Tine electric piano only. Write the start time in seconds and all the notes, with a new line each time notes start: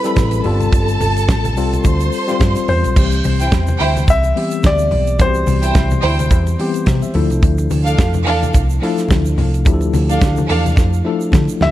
Already playing: G3 C4 E4 G#4 A4
0.04 G3 C4 E4 A4
0.45 G3 B3 F4 A4
0.52 C4
1.57 G3 C4 F4 A4
2.27 G3 C4 F4 C5
2.96 E3 G3 C4 G4
4.36 E3 G3 B3 C4 G4
5.19 E3 G3 C4 F#4
5.28 G4
6.59 E3 G3 B3 C4 G4
6.88 C5
7.02 E5
7.14 F3 A3 D4 E4 A4
8.82 F3 A3 D4 E4 A4
9.66 F3 A3 D4 E4 G4
9.73 A4
11.05 F3 A3 D4 E4 A4